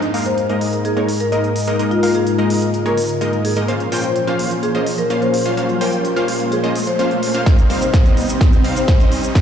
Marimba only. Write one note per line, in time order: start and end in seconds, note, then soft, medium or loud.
0.26 0.42 C5 medium
0.85 0.92 G#4 medium
0.97 1.04 G#4 medium
1.20 1.36 A#4 medium
1.91 1.99 F4 medium
2.03 2.11 F4 medium
2.15 2.31 G#4 medium
2.86 2.93 A#4 medium
2.98 3.05 A#4 medium
3.45 3.73 G#4 medium
4.04 4.20 C5 medium
4.63 4.70 G#4 medium
4.75 4.82 G#4 medium
4.98 5.14 A#4 medium
5.22 5.29 C5 medium
5.34 5.41 C5 medium
5.81 5.97 A#4 medium
6.52 6.68 G#4 medium
6.87 7.35 C5 medium
7.82 7.98 C5 medium
8.76 8.92 C5 medium